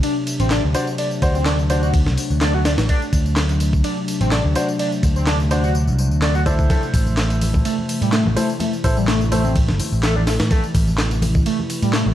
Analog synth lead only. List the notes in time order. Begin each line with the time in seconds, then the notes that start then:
0.03 D4
0.40 C4
0.51 D4
0.75 D4
0.98 D4
1.35 C4
1.46 D4
1.70 D4
1.83 F#4
2.41 D4
2.54 F#4
2.65 D4
2.89 D4
3.84 D4
4.21 C4
4.32 D4
4.56 D4
4.79 D4
5.16 C4
5.27 D4
5.51 D4
5.64 F#4
6.22 D4
6.35 F#4
6.46 D4
6.70 A3
7.65 A3
8.02 G3
8.13 A3
8.36 A3
8.60 A3
8.97 G3
9.08 A3
9.32 A3
9.45 C4
10.03 A3
10.16 D4
10.27 A3
10.51 A3
11.46 A3
11.83 G3
11.94 A3